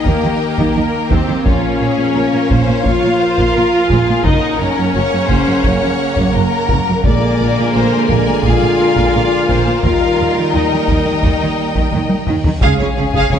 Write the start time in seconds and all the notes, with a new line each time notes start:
Already playing: D#3 A#3 A#4 D#5 G5
0.05 D#2 D#3 A#3 G4 A#4, taiko
0.23 D#3
0.58 D#3, taiko
0.76 D#2 D#3 A#4
1.11 D#2 D#3 C4 G4 C5, taiko
1.28 D#3
1.45 A#1 A#2 F3 C#4 F4 A#4 C#5 F5, taiko
1.80 A#1 A#2 G#4
1.97 A#2
2.15 A#1 A#2 A#4
2.33 A#2
2.50 A#1 A#2 C5, taiko
2.68 A#2
2.85 A#1 A#2 F4 C#5 F5, taiko
3.03 A#2
3.19 C5
3.38 A#2, taiko
3.54 A#1 A#2 A#4
3.88 A#1 A#2 G#4, taiko
4.08 A#2
4.24 F#1 F#2 C#3 A#3 C#4 D#4 A#4 D#5 F#5, taiko
4.59 F#1 F#2 C#4 C#5
4.77 F#2
4.95 F#1 F#2 C#5
5.13 F#2
5.29 F#1 F#2 C5, taiko
5.47 F#2
5.64 F#1 F#2 C#5, taiko
5.82 F#2
6.16 F#2, taiko
6.35 F#1 F#2 A#4
6.69 F#1 F#2, taiko
6.88 F#2
7.04 A#1 A#2 D3 G#3 A#3 A#4 D5 G#5, taiko
7.40 A#1 A#2
7.58 A#2
7.75 A#1 A#2 C5
7.93 A#2
8.09 A#1 A#2 A#4, taiko
8.28 A#2
8.44 A#1 A#2 F4 G#4 F5, taiko
8.62 A#2
8.81 A#4
8.96 A#2, taiko
9.15 A#1 A#2 D5
9.49 A#1 A#2 C5, taiko
9.66 A#2
9.83 D#2 D#3 G3 A#3 F4 A#4 D#5 F5 G5, taiko, reverse cymbal
10.18 D#2 D#3
10.36 D#3
10.53 D#2 D#3 D#4 D#5
10.72 D#3
10.88 D#2 D#3, taiko
11.06 D#3
11.23 D#2 D#3, taiko
11.42 D#3
11.75 D#3, taiko
11.92 D#2 D#3, taiko mid
12.09 taiko high
12.27 D#2 D#3, taiko low-mid
12.44 D#3, taiko low
12.61 C#2 C#3 G#3 C#4 F4 G#4 C#5 F5 G#5, taiko, sub drop
12.80 C#3 G#4 C#5
12.97 C#2 C#3 G#4
13.14 C#3 G#4 F5, taiko
13.31 C#2 C#3 G#4 C#5, taiko low